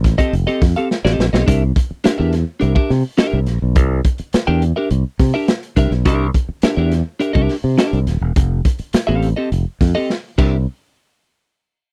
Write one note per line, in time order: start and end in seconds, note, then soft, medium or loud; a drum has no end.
0.00 0.14 A1 loud
0.04 kick medium
0.04 snare soft
0.04 closed hi-hat medium
0.18 0.34 C4 medium
0.18 0.34 G4 medium
0.18 0.33 A4 medium
0.18 0.33 D#5 loud
0.18 kick medium
0.18 closed hi-hat medium
0.33 0.45 F1 medium
0.33 closed hi-hat medium
0.47 0.63 C4 medium
0.47 0.62 G4 medium
0.47 0.62 A4 medium
0.47 0.62 D#5 medium
0.47 closed hi-hat soft
0.62 0.73 F2 medium
0.62 kick medium
0.62 snare soft
0.62 open hi-hat medium
0.76 0.89 C4 medium
0.76 0.88 G4 medium
0.76 0.88 A4 medium
0.76 0.88 F5 medium
0.76 closed hi-hat medium
0.91 snare medium
1.05 1.16 A1 medium
1.05 1.25 C4 medium
1.05 1.25 G4 medium
1.05 1.25 A4 medium
1.05 1.24 D#5 medium
1.05 snare medium
1.19 1.31 A#1 medium
1.19 snare loud
1.33 1.45 B1 medium
1.33 1.46 C4 medium
1.33 1.45 G4 medium
1.33 1.45 A4 medium
1.33 1.45 D#5 medium
1.33 snare loud
1.46 1.71 C2 medium
1.46 1.62 D4 medium
1.46 1.62 G4 medium
1.46 1.62 A#4 medium
1.46 1.63 E5 medium
1.46 kick loud
1.46 closed hi-hat medium
1.76 kick loud
1.76 closed hi-hat medium
1.91 muted fingered electric bass stroke soft
2.04 2.16 D4 medium
2.04 2.16 G4 medium
2.04 2.16 A#4 medium
2.04 2.17 E5 medium
2.04 muted fingered electric bass stroke medium
2.04 snare loud
2.04 closed hi-hat loud
2.18 2.43 E2 medium
2.18 2.34 D4 medium
2.18 2.34 G4 medium
2.18 2.33 A#4 medium
2.18 2.33 E5 medium
2.33 snare soft
2.33 closed hi-hat medium
2.60 2.74 C2 medium
2.60 2.72 D4 medium
2.60 2.73 G4 medium
2.60 2.73 A#4 medium
2.60 2.74 E5 medium
2.60 closed hi-hat medium
2.75 2.91 D4 medium
2.75 2.91 G4 medium
2.75 2.90 A#4 medium
2.75 2.90 E5 medium
2.75 kick loud
2.90 3.02 C3 loud
2.90 snare soft
2.90 open hi-hat medium
3.17 3.38 D4 medium
3.17 3.38 G4 loud
3.17 3.39 A#4 loud
3.17 3.39 E5 loud
3.17 snare loud
3.17 closed hi-hat medium
3.33 3.47 C2 loud
3.46 3.59 A#1 medium
3.46 snare soft
3.46 closed hi-hat medium
3.62 3.76 B1 medium
3.75 4.00 C2 medium
3.75 kick loud
3.75 closed hi-hat medium
4.04 kick loud
4.04 closed hi-hat medium
4.18 muted fingered electric bass stroke soft
4.18 closed hi-hat medium
4.33 muted fingered electric bass stroke medium
4.33 snare loud
4.33 closed hi-hat medium
4.47 4.71 E2 medium
4.47 4.63 D4 medium
4.47 4.63 G4 medium
4.47 4.62 A#4 medium
4.47 4.62 G5 medium
4.62 closed hi-hat medium
4.76 4.89 D4 medium
4.76 4.89 G4 medium
4.76 4.88 A#4 medium
4.76 4.88 E5 medium
4.90 5.03 C2 medium
4.90 closed hi-hat medium
5.19 5.31 C3 medium
5.19 kick medium
5.19 snare soft
5.19 open hi-hat medium
5.34 5.49 D4 medium
5.34 5.49 G4 medium
5.34 5.49 A#4 medium
5.34 5.49 E5 medium
5.48 snare loud
5.48 closed hi-hat loud
5.63 closed hi-hat medium
5.76 5.89 C2 medium
5.76 5.91 D4 loud
5.76 5.92 G4 medium
5.76 5.92 A#4 medium
5.76 5.93 E5 loud
5.76 kick loud
5.76 closed hi-hat medium
5.91 6.05 B1 medium
5.91 snare soft
6.05 6.29 C2 medium
6.05 6.25 D4 loud
6.05 6.26 G4 loud
6.05 6.26 A#4 loud
6.05 6.26 E5 loud
6.05 kick loud
6.05 closed hi-hat medium
6.34 kick medium
6.34 closed hi-hat medium
6.49 muted fingered electric bass stroke soft
6.62 6.75 D4 medium
6.62 6.75 G4 medium
6.62 6.75 A#4 medium
6.62 6.76 E5 medium
6.62 muted fingered electric bass stroke medium
6.62 snare loud
6.62 closed hi-hat medium
6.77 7.01 E2 medium
6.77 6.93 D4 medium
6.77 6.93 G4 medium
6.77 6.92 A#4 medium
6.77 6.92 E5 medium
6.92 snare soft
6.92 closed hi-hat medium
7.20 7.32 D4 medium
7.20 7.32 G4 medium
7.20 7.32 A#4 medium
7.20 7.32 E5 medium
7.20 closed hi-hat medium
7.33 7.47 C2 medium
7.33 7.55 D4 medium
7.33 7.55 G4 medium
7.33 7.54 A#4 medium
7.33 7.54 E5 medium
7.33 kick loud
7.49 snare soft
7.49 open hi-hat medium
7.64 7.76 C3 medium
7.78 7.98 D4 medium
7.78 7.99 G4 medium
7.78 7.99 A#4 medium
7.78 7.99 E5 medium
7.78 snare loud
7.78 closed hi-hat medium
7.93 8.05 C2 medium
7.93 closed hi-hat soft
8.07 8.19 D#1 medium
8.07 snare soft
8.07 closed hi-hat medium
8.21 8.33 E1 medium
8.36 8.60 F1 medium
8.36 kick loud
8.36 closed hi-hat medium
8.65 kick loud
8.65 closed hi-hat medium
8.79 muted fingered electric bass stroke soft
8.79 closed hi-hat soft
8.93 muted fingered electric bass stroke medium
8.93 snare loud
8.93 closed hi-hat medium
9.07 9.32 A1 medium
9.07 9.29 C4 medium
9.07 9.28 G4 medium
9.07 9.28 A4 medium
9.07 9.28 F5 medium
9.22 closed hi-hat medium
9.36 9.49 C4 medium
9.36 9.49 G4 medium
9.36 9.49 A4 medium
9.36 9.48 D#5 medium
9.52 9.64 F1 medium
9.52 closed hi-hat medium
9.81 9.92 F2 medium
9.81 kick medium
9.81 snare soft
9.81 open hi-hat medium
9.95 10.11 C4 medium
9.95 10.11 G4 medium
9.95 10.10 A4 medium
9.95 10.10 D#5 medium
10.10 snare medium
10.38 10.65 C2 medium
10.38 10.55 D4 medium
10.38 10.56 G4 medium
10.38 10.56 A#4 medium
10.38 10.56 E5 loud
10.38 kick loud
10.38 crash medium